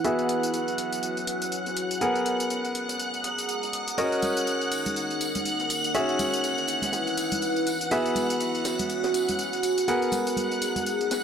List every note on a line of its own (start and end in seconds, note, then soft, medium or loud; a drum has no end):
0.00 0.80 E4 medium
0.00 0.84 B4 medium
0.00 0.84 F#5 medium
0.00 11.24 F#5 medium
0.00 11.24 F#6 medium
0.04 1.99 B3 medium
0.04 1.99 F#4 medium
0.04 2.81 F#4 medium
0.04 1.99 G#4 medium
0.04 1.99 E5 medium
0.04 closed hi-hat soft
0.04 tambourine soft
0.19 closed hi-hat soft
0.19 tambourine soft
0.29 closed hi-hat medium
0.43 2.81 C#5 medium
0.43 closed hi-hat soft
0.43 tambourine medium
0.54 closed hi-hat soft
0.54 tambourine soft
0.68 closed hi-hat soft
0.68 tambourine soft
0.78 closed hi-hat medium
0.90 2.77 G#5 medium
0.90 closed hi-hat soft
0.90 tambourine medium
1.03 closed hi-hat soft
1.03 tambourine soft
1.17 closed hi-hat soft
1.17 tambourine soft
1.27 closed hi-hat medium
1.42 snare soft
1.42 closed hi-hat soft
1.42 tambourine medium
1.52 closed hi-hat soft
1.52 tambourine medium
1.66 snare soft
1.66 closed hi-hat soft
1.66 tambourine soft
1.77 closed hi-hat medium
1.91 closed hi-hat soft
1.91 tambourine medium
2.01 3.95 B3 medium
2.01 4.77 G#4 medium
2.01 3.95 G#4 medium
2.01 3.95 A#4 medium
2.01 3.95 F#5 medium
2.01 closed hi-hat soft
2.01 tambourine medium
2.15 closed hi-hat soft
2.15 tambourine soft
2.25 6.74 D#6 medium
2.25 closed hi-hat medium
2.40 closed hi-hat soft
2.40 tambourine medium
2.46 4.77 A#5 medium
2.50 closed hi-hat soft
2.50 tambourine medium
2.65 closed hi-hat soft
2.65 tambourine soft
2.75 closed hi-hat medium
2.89 snare soft
2.89 closed hi-hat soft
2.89 tambourine medium
3.00 closed hi-hat soft
3.00 tambourine medium
3.14 closed hi-hat soft
3.14 tambourine soft
3.24 snare soft
3.24 closed hi-hat medium
3.38 closed hi-hat soft
3.38 tambourine medium
3.49 closed hi-hat soft
3.49 tambourine medium
3.63 closed hi-hat soft
3.63 tambourine soft
3.73 closed hi-hat medium
3.73 open hi-hat medium
3.88 closed hi-hat soft
3.88 tambourine medium
3.98 5.92 C#4 medium
3.98 5.95 D#4 medium
3.98 5.92 F#4 medium
3.98 5.92 A#4 medium
3.98 5.92 D#5 medium
3.98 closed hi-hat soft
3.98 tambourine soft
3.98 tambourine medium
4.12 closed hi-hat soft
4.12 tambourine soft
4.22 closed hi-hat medium
4.22 tambourine medium
4.22 high conga medium
4.27 5.95 A#4 medium
4.37 closed hi-hat soft
4.37 tambourine medium
4.47 closed hi-hat soft
4.47 tambourine medium
4.61 closed hi-hat soft
4.61 tambourine soft
4.71 closed hi-hat medium
4.71 tambourine medium
4.85 closed hi-hat soft
4.85 tambourine soft
4.85 tambourine medium
4.85 high conga medium
4.96 closed hi-hat soft
4.96 tambourine medium
5.11 closed hi-hat soft
5.11 tambourine soft
5.21 closed hi-hat medium
5.21 tambourine medium
5.35 snare soft
5.35 closed hi-hat soft
5.35 tambourine medium
5.35 tambourine soft
5.35 high conga medium
5.45 closed hi-hat soft
5.45 tambourine medium
5.45 tambourine soft
5.59 snare soft
5.59 closed hi-hat soft
5.59 tambourine soft
5.70 closed hi-hat medium
5.70 tambourine medium
5.84 closed hi-hat soft
5.84 tambourine soft
5.84 tambourine medium
5.95 7.89 C#4 medium
5.95 8.61 E4 medium
5.95 7.89 F#4 medium
5.95 7.89 G#4 medium
5.95 7.89 E5 medium
5.95 closed hi-hat medium
5.95 tambourine soft
5.95 tambourine medium
6.09 8.71 B4 medium
6.09 closed hi-hat soft
6.09 tambourine soft
6.19 8.71 F#5 medium
6.19 closed hi-hat medium
6.19 tambourine medium
6.19 high conga medium
6.34 closed hi-hat soft
6.34 tambourine soft
6.34 tambourine medium
6.44 closed hi-hat medium
6.44 tambourine medium
6.58 closed hi-hat soft
6.58 tambourine soft
6.68 closed hi-hat medium
6.68 tambourine medium
6.82 snare medium
6.82 closed hi-hat soft
6.82 tambourine medium
6.82 tambourine soft
6.82 high conga medium
6.93 snare loud
6.93 closed hi-hat soft
6.93 tambourine soft
6.93 tambourine medium
7.07 closed hi-hat soft
7.07 tambourine soft
7.17 closed hi-hat medium
7.17 tambourine medium
7.31 closed hi-hat soft
7.31 tambourine soft
7.31 tambourine medium
7.31 high conga medium
7.41 closed hi-hat soft
7.41 tambourine soft
7.41 tambourine medium
7.56 closed hi-hat soft
7.56 tambourine soft
7.66 closed hi-hat medium
7.66 open hi-hat medium
7.66 tambourine medium
7.81 closed hi-hat soft
7.81 tambourine medium
7.91 9.86 B3 medium
7.91 9.86 F#4 medium
7.91 10.68 F#4 medium
7.91 9.86 G#4 medium
7.91 9.86 E5 medium
7.91 closed hi-hat medium
7.91 tambourine soft
7.91 tambourine medium
8.06 closed hi-hat soft
8.06 tambourine soft
8.10 10.68 C#5 medium
8.16 closed hi-hat medium
8.16 tambourine medium
8.16 high conga medium
8.30 closed hi-hat medium
8.30 tambourine medium
8.30 tambourine soft
8.40 closed hi-hat medium
8.40 tambourine medium
8.55 10.68 G#5 medium
8.55 closed hi-hat soft
8.55 tambourine soft
8.65 snare loud
8.65 closed hi-hat medium
8.65 tambourine medium
8.79 closed hi-hat medium
8.79 tambourine soft
8.79 tambourine medium
8.79 high conga medium
8.90 closed hi-hat soft
8.90 tambourine soft
8.90 tambourine medium
9.04 snare loud
9.04 closed hi-hat soft
9.04 tambourine soft
9.04 tambourine medium
9.14 closed hi-hat medium
9.14 tambourine medium
9.29 closed hi-hat medium
9.29 tambourine medium
9.29 tambourine soft
9.29 tambourine medium
9.29 high conga medium
9.39 closed hi-hat medium
9.39 tambourine medium
9.39 tambourine soft
9.53 snare soft
9.53 closed hi-hat soft
9.53 tambourine soft
9.63 closed hi-hat medium
9.63 tambourine medium
9.78 closed hi-hat soft
9.78 tambourine medium
9.78 tambourine soft
9.88 11.24 B3 medium
9.88 11.24 G#4 medium
9.88 11.24 A#4 medium
9.88 11.24 F#5 medium
9.88 closed hi-hat medium
9.88 tambourine medium
9.99 11.24 D#5 medium
9.99 closed hi-hat soft
9.99 tambourine soft
10.07 11.24 A#5 loud
10.12 closed hi-hat medium
10.12 tambourine medium
10.12 high conga medium
10.13 tambourine medium
10.27 closed hi-hat medium
10.27 tambourine soft
10.27 tambourine medium
10.37 closed hi-hat medium
10.37 tambourine soft
10.37 tambourine medium
10.37 high conga medium
10.51 closed hi-hat soft
10.51 tambourine soft
10.62 closed hi-hat loud
10.62 tambourine medium
10.76 snare soft
10.76 closed hi-hat medium
10.76 tambourine medium
10.76 tambourine soft
10.76 high conga medium
10.86 closed hi-hat medium
10.86 tambourine medium
11.00 closed hi-hat soft
11.00 tambourine soft
11.11 snare loud
11.11 closed hi-hat medium
11.11 tambourine medium